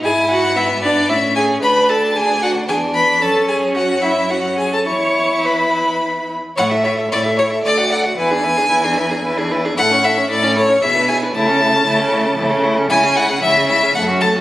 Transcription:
X:1
M:3/4
L:1/16
Q:1/4=113
K:A
V:1 name="Violin"
g2 f2 e2 d2 e2 g2 | b2 a2 g2 f2 g2 b2 | a2 g2 f2 e2 f2 g a | c'4 b6 z2 |
f2 e2 d2 c2 d2 f2 | g8- g2 z2 | f2 e2 d2 c2 e2 g2 | a8- a2 z2 |
[K:C#m] g2 f2 e2 e2 f2 a2 |]
V:2 name="Violin"
E4 B,4 C4 | D8 D4 | C8 C4 | E8- E2 z2 |
c e c e c e c e d f d f | B G B G B G B G B G B G | A c A c A c A c G B G B | E A E A E A E A E A E A |
[K:C#m] E G E G E G E G A F A F |]
V:3 name="Viola"
G2 F2 E2 D2 E2 G2 | B2 A2 G2 F2 G2 B2 | A2 G2 F2 E2 F2 G A | c4 B6 z2 |
E A E A E A E A A F A F | E D E D E D E D E D E D | E C E C E C E C E D E D | A, C A, C A, C A, C A, C A, C |
[K:C#m] G, C G, C G, C G, C A, C A, C |]
V:4 name="Cello" clef=bass
G,,8 A,,4 | D,,8 E,,4 | F,,12 | E,,8- E,,2 z2 |
A,,4 A,,4 D,,4 | E,,4 E,,4 E,,4 | A,,4 A,,4 B,,4 | C,4 C,4 C,4 |
[K:C#m] C,4 C,4 F,,4 |]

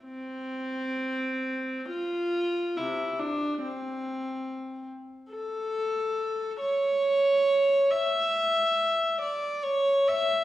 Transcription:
X:1
M:3/4
L:1/8
Q:1/4=70
K:C
V:1 name="Viola"
C4 F2 | [C,E] D C3 z | [K:A] A3 c3 | e3 d c e |]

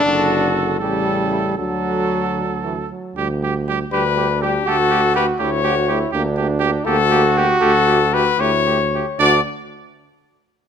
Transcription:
X:1
M:6/8
L:1/16
Q:3/8=78
K:D
V:1 name="Trumpet"
F6 G2 A2 E2 | F8- F z3 | z6 B4 G2 | A4 B2 c6 |
z6 A4 G2 | A4 B2 c6 | d2 z8 z2 |]
V:2 name="Trumpet"
A6 A6 | A8- A2 z2 | G2 G2 G2 G2 G2 G2 | G2 G2 G2 G2 G2 G2 |
G2 G2 G2 G2 G2 G2 | G2 G2 G2 G2 G2 G2 | d2 z8 z2 |]
V:3 name="Trombone"
D,6 C,6 | D,6 D,2 E,2 F,2 | z6 D6 | F6 E2 F2 E2 |
D6 F6- | F6 E3 z3 | D2 z8 z2 |]
V:4 name="French horn"
D4 z2 G,6 | F,8- F,2 z2 | G,2 G,2 G,2 G,2 G,2 G,2 | A,2 A,2 A,2 A,2 A,2 A,2 |
_B,2 B,2 B,2 B,2 B,2 B,2 | A,2 A,2 A,2 A,2 A,2 A,2 | F2 z8 z2 |]
V:5 name="Bass trombone" clef=bass
F,,,6 A,,,6 | D,,8- D,,2 z2 | D,,6 D,,6 | D,,6 D,,6 |
D,,6 D,,6 | D,,6 D,,6 | D,,2 z8 z2 |]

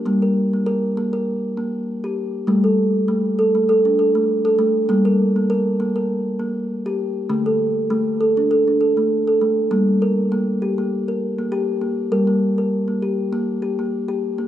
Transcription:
X:1
M:4/4
L:1/16
Q:"Swing 16ths" 1/4=100
K:none
V:1 name="Kalimba"
_B, _B2 B, B2 B, B2 z B,2 z G2 z | A, A2 z A,2 A A, A D A A,2 A A,2 | _B, _B2 B, B2 B, B2 z B,2 z G2 z | A, A2 z A,2 A D A D A A,2 A A,2 |
_B,2 _B2 B,2 G B,2 B2 B, G2 B,2 | _B _B,2 B2 B, G2 B,2 G B,2 G2 B, |]
V:2 name="Kalimba" clef=bass
G,16 | G,16 | G,16 | D,16 |
G,16 | G,16 |]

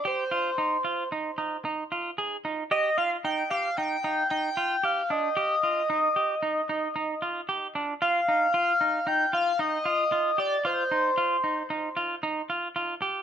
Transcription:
X:1
M:5/4
L:1/8
Q:1/4=113
K:Eb
V:1 name="Analog synth lead"
c4 z6 | e f g f g2 g2 f e- | e6- e z3 | f4 g f e3 d |
c4 z6 |]
V:2 name="Clean electric guitar"
G F E F E E E F A E | G F E G E E E F G D | G F E G E E E F G D | F E F E E F E F F G |
F E F E E F E F F G |]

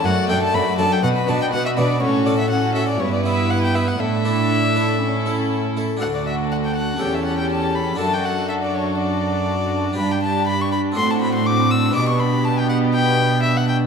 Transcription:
X:1
M:4/4
L:1/16
Q:1/4=122
K:D
V:1 name="Violin"
f2 g a b2 a g f b a g f e d2 | c2 d e f2 e d c d e2 f g e f | e12- e2 z2 | f d e2 f g f2 g e f g a2 b2 |
a g f2 e d c2 d8 | b g a2 b c' b2 =c' a b c' d'2 e'2 | d' c' b2 a g f2 g4 e f g2 |]
V:2 name="Violin section"
d2 A2 d2 A2 B2 F2 B2 F2 | A4 A4 B8 | A8 A6 z2 | A16- |
A16 | G8 F8 | G16 |]
V:3 name="Violin section"
F2 A2 F2 A2 F2 B2 F2 B2 | F4 F4 E8 | E8 E6 z2 | F8 G8 |
F16 | D16- | D16 |]
V:4 name="Harpsichord"
z2 [A,Fd]4 [A,Fd]2 z2 [B,Fd]4 [B,Fd]2 | z2 [CFA]4 [CFA]2 z2 [B,EB]4 [B,EB]2 | z2 [DEA]4 [DEA]2 z2 [CEA]4 [CEA]2 | [DFA]8 [CGA]8 |
[DFA]16 | [DG]8 [=CDF]8 | [B,DG]16 |]
V:5 name="Harpsichord" clef=bass
F,,2 F,,2 F,,2 F,,2 B,,2 B,,2 B,,2 B,,2 | A,,8 G,,8 | A,,12- A,,2 z2 | D,,8 E,,8 |
F,,16 | G,,8 A,,8 | B,,16 |]
V:6 name="Viola section"
A,2 D2 A,2 D2 B,2 D2 B,2 D2 | C4 C4 B,8 | D8 C6 z2 | D8 C8 |
D16- | D8 =C8 | B,16 |]
V:7 name="Cello section" clef=bass
F,,2 F,,2 F,,2 F,,2 B,,2 B,,2 B,,2 B,,2 | A,,8 G,,8 | A,,12- A,,2 z2 | D,,8 E,,8 |
F,,16 | G,,8 A,,8 | B,,16 |]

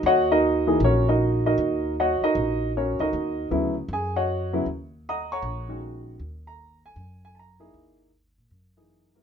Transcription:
X:1
M:4/4
L:1/8
Q:"Swing" 1/4=156
K:Ebphr
V:1 name="Grand piano"
[Gdeg] [EGBe]3 [DGBd] [EGBe]2 [EGBe]- | [EGBe]2 [Gdeg] [EGBe]3 [DGBd] [EGBe]- | [EGBe]2 z2 [Aa] [Gdeg]3 | z2 [egbe'] [dgbd']3 z2 |
z b2 a2 a [=ab]2 | z8 |]
V:2 name="Grand piano"
z3 [F,B,EA] z4 | z8 | z2 [D,G,CF] z4 [D,G,CF] | z4 z [E,A,DG]3 |
z6 z [B,EFA]- | [B,EFA]2 z3 [F,B,EA]2 [G,CFB] |]
V:3 name="Upright bass" clef=bass
E,,4 B,,,4 | E,,3 z B,,,3 D,, | E,,2 =D,,2 G,,4 | E,,4 B,,,4 |
E,,4 G,,4 | E,,3 B,, G,,4 |]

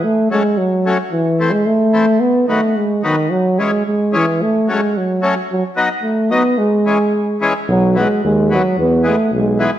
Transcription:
X:1
M:2/4
L:1/16
Q:1/4=110
K:Bmix
V:1 name="Accordion" clef=bass
z2 [F,A,C]2 z2 [F,A,C]2 | z2 [E,A,=C]2 z2 [E,A,C]2 | z2 [D,F,B,]2 z2 [D,F,B,]2 | z2 [E,G,C]2 z2 [E,G,C]2 |
z2 [F,A,C]2 z2 [F,A,C]2 | z2 [F,B,D]2 z2 [F,B,D]2 | z2 [E,G,C]2 z2 [E,G,C]2 | z2 [E,F,B,]2 z2 [E,F,B,]2 |
z2 [E,G,B,]2 z2 [E,G,B,]2 |]
V:2 name="Euphonium" clef=bass
A,2 G,2 F,3 z | E,3 G, A,4 | B,2 A,2 G,2 D,2 | F,2 G,2 G,2 E,2 |
A,2 G,2 F,3 z | F,2 z2 A,2 B,2 | G,6 z2 | F,2 G,2 G,2 F,2 |
B,2 A,2 G,3 z |]
V:3 name="Tuba" clef=bass
z8 | z8 | z8 | z8 |
z8 | z8 | z8 | B,,,4 D,,4 |
E,,4 B,,,4 |]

